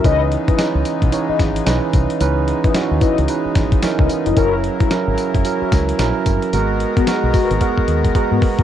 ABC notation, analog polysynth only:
X:1
M:4/4
L:1/16
Q:"Swing 16ths" 1/4=111
K:C#dor
V:1 name="Analog polysynth"
[EBd] z2 [EBd] z4 z [EBd] z6 | z3 [EBd] z2 [EBd] z6 [EBd] z [EBd] | [EFA] z2 [EFA] z4 z [EFA] z6 | z3 [B,FA] z2 [B,FA] z6 [B,FA] z [B,FA] |]